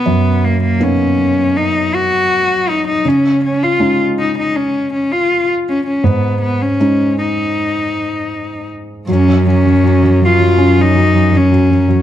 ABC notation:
X:1
M:4/4
L:1/16
Q:1/4=80
K:C#mix
V:1 name="Cello"
B,2 A, A, C4 D2 F4 D D | C2 C E2 z D D C2 C E2 z C C | B,2 B, C3 D8 z2 | C2 C4 E3 D3 C3 z |]
V:2 name="Felt piano" clef=bass
[F,,B,DA]4 [A,B,D]12 | C,4 [G,CD]12 | G,,4 [G,CD]12 | F, F, F, F, F, F, F, F, C F, F, F, F, F, F, F, |]
V:3 name="Cello" clef=bass
z16 | z16 | z16 | F,,16 |]